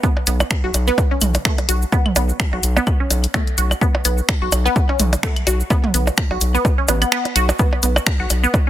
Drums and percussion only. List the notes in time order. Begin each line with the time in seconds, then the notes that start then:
0.03 kick, cabasa
0.17 percussion blips
0.27 closed hi-hat, cabasa
0.40 cabasa, claves, percussion blips
0.51 finger snap, kick, cabasa
0.74 closed hi-hat, cabasa, percussion blips
0.87 cabasa
0.98 kick, cabasa, percussion blips
1.21 closed hi-hat, mid tom, cabasa, claves
1.34 closed hi-hat, cabasa, percussion blips
1.45 finger snap, kick, cabasa
1.58 closed hi-hat, percussion blips
1.69 closed hi-hat, cabasa
1.82 cabasa
1.92 kick, cabasa, percussion blips
2.06 mid tom, claves
2.16 closed hi-hat, cabasa, percussion blips
2.29 cabasa
2.40 finger snap, kick, cabasa
2.53 percussion blips
2.63 closed hi-hat, cabasa
2.77 cabasa, percussion blips
2.87 kick, cabasa, claves
3.11 closed hi-hat, cabasa, percussion blips
3.24 closed hi-hat, cabasa
3.34 finger snap, kick, cabasa, percussion blips
3.47 closed hi-hat
3.58 closed hi-hat, cabasa
3.71 cabasa, claves, percussion blips
3.81 kick, cabasa
3.95 percussion blips
4.05 closed hi-hat, cabasa
4.18 cabasa
4.29 finger snap, kick, cabasa, percussion blips
4.52 closed hi-hat, cabasa, claves, percussion blips
4.66 cabasa
4.76 kick, cabasa
4.89 percussion blips
4.99 closed hi-hat, mid tom, cabasa
5.13 closed hi-hat, cabasa, percussion blips
5.23 finger snap, kick, cabasa
5.36 closed hi-hat, claves
5.47 closed hi-hat, cabasa, percussion blips
5.60 cabasa
5.70 kick, cabasa, percussion blips
5.84 mid tom
5.94 closed hi-hat, cabasa
6.07 cabasa, percussion blips
6.17 finger snap, kick, cabasa, claves
6.31 percussion blips
6.41 closed hi-hat, cabasa
6.55 cabasa
6.65 kick, cabasa, percussion blips
6.88 closed hi-hat, cabasa, percussion blips
7.02 closed hi-hat, cabasa, claves
7.12 finger snap, cabasa
7.25 closed hi-hat, percussion blips
7.36 closed hi-hat, cabasa
7.49 cabasa, percussion blips
7.59 kick, cabasa
7.73 percussion blips
7.83 closed hi-hat, cabasa
7.96 cabasa, claves, percussion blips
8.06 finger snap, kick, cabasa
8.30 closed hi-hat, cabasa, percussion blips
8.44 cabasa
8.54 kick, cabasa, percussion blips